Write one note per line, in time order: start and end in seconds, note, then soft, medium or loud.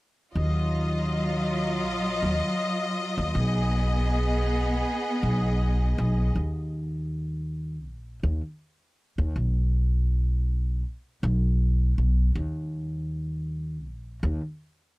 0.34 1.85 D#2 medium
0.34 3.32 F#3 medium
0.34 3.31 F4 medium
0.34 6.31 D#5 medium
1.85 2.18 A#1 medium
2.23 2.40 D#2 medium
3.18 3.33 D#2 medium
3.35 4.81 B1 medium
3.35 6.32 B3 medium
3.35 6.32 G#4 medium
5.23 5.94 B1 medium
5.98 6.31 B1 medium
6.35 7.86 D#2 medium
7.86 8.18 A#1 medium
8.23 8.40 D#2 medium
9.18 9.33 D#2 medium
9.36 10.82 B1 medium
11.23 11.94 B1 medium
11.98 12.31 B1 medium
12.35 13.85 D#2 medium
13.85 14.18 A#1 loud
14.23 14.40 D#2 medium